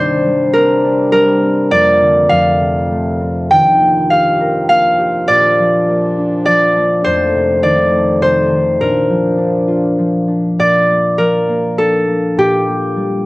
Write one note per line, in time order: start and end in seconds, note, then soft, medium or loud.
0.00 1.69 C3 medium
0.00 1.76 C3 medium
0.00 1.70 G3 medium
0.00 2.30 A#3 medium
0.00 1.70 D4 medium
0.00 1.93 C5 medium
0.00 1.22 D5 medium
0.25 1.12 G3 medium
0.53 1.42 C4 medium
0.53 1.12 A#4 medium
0.84 3.57 D4 medium
1.12 1.76 G3 medium
1.12 3.24 A#4 medium
1.43 3.20 C4 medium
1.71 2.30 F2 medium
1.71 3.48 F2 medium
1.71 2.30 D3 medium
1.71 2.30 F3 medium
1.71 2.30 A#3 medium
1.71 3.56 D5 loud
2.02 2.35 D3 soft
2.29 3.55 F2 medium
2.29 3.49 C3 medium
2.29 3.49 A3 medium
2.29 3.96 F5 medium
2.60 3.55 C3 soft
2.91 3.86 A3 soft
3.21 6.21 C4 soft
3.50 5.26 G2 medium
3.50 5.26 D#3 medium
3.50 5.33 D#3 medium
3.50 7.00 F3 medium
3.50 5.06 G5 loud
3.80 4.70 A#3 soft
4.10 4.98 G4 medium
4.10 4.69 F5 medium
4.41 6.53 A#4 soft
4.69 5.88 A#3 medium
4.69 6.35 F5 medium
4.99 7.34 G4 medium
5.28 7.02 A#2 medium
5.28 7.09 A#2 medium
5.28 7.02 D4 medium
5.28 6.45 D5 medium
5.59 6.46 F3 soft
5.89 6.76 A#3 soft
6.18 7.69 D4 medium
6.45 7.09 F3 medium
6.45 7.63 D5 medium
6.76 7.97 A#3 medium
7.03 8.78 F2 medium
7.03 8.85 F2 medium
7.03 8.77 D#3 medium
7.03 8.78 A3 medium
7.03 8.22 C5 medium
7.34 7.67 C3 soft
7.63 8.26 D#3 medium
7.63 9.48 D5 medium
7.91 8.86 A3 soft
8.21 8.55 C3 soft
8.21 10.20 C5 medium
8.50 8.85 D#3 soft
8.80 10.58 A#2 medium
8.80 10.56 A#2 medium
8.80 10.56 F3 medium
8.80 10.56 D4 medium
8.80 10.93 A#4 medium
9.10 9.98 F3 soft
9.38 10.27 D4 medium
9.68 12.20 F4 medium
9.99 10.62 F3 medium
10.28 11.78 D4 soft
10.59 12.36 A#2 medium
10.59 12.44 D5 medium
10.88 11.48 A#3 soft
11.18 12.42 F3 soft
11.18 11.84 A#4 medium
11.49 12.08 A#3 soft
11.78 13.26 D4 medium
11.78 13.26 A4 medium
12.08 12.67 A#3 soft
12.37 13.26 A#2 medium
12.37 13.26 G4 medium
12.67 13.25 A#3 soft
12.97 13.26 G3 soft